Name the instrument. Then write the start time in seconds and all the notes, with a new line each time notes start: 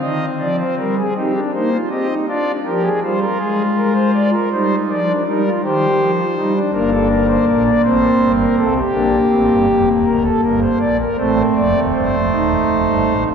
pipe organ
Already playing: C4
0.01 D#3 D#5
0.39 F3 D5
0.58 C5
0.78 G3 A#4
0.98 G#4
1.16 C4 D#4 G4
1.35 D4
1.54 A#3 D#4 C5
1.73 F4
1.90 C4 G4 D#5
2.10 D#4
2.28 D4 F4 D5
2.65 F3 G4 A#4
2.83 G#4
3.02 G3 F4 C5
3.21 A#4
3.39 G#3 G#4
3.77 A#4
3.94 C5
4.14 D5
4.32 A#4
4.51 G3 D#4 C5
4.89 F3 D5
5.08 D4
5.27 G3 D#4 A#4
5.46 F4
5.63 D#3 G4 C5
5.99 F3
6.19 F4
6.37 G3 D#4
6.55 D4
6.73 G1 G2 A#3 D4 A#4
6.91 A4
7.10 A#4
7.28 C5
7.47 A#1 A#2 A#4
7.65 D5
7.84 A1 A2 C4 C5
8.21 G1 G2
8.39 A#4
8.57 C2 C3 A4
8.75 G4
8.93 A#1 A#2 A#3 D4
9.30 A1 A2 C4
9.50 G1 G2
9.69 F1 F2 A#3
9.86 D#1 D#2
10.06 D1 D2 A#4
10.24 A4
10.43 G1 G2 A#4
10.61 C5
10.80 A#1 A#2 D5
10.99 A#4
11.17 A1 A2 A3 C4 C5
11.55 F1 F2 D5
11.74 D#1 D#2
11.93 G1 G2 C5
12.11 F1 F2
12.31 D#1 D#2 D#4
12.67 F1 F2
12.86 G1 G2
13.06 A1 A2
13.24 F1 F2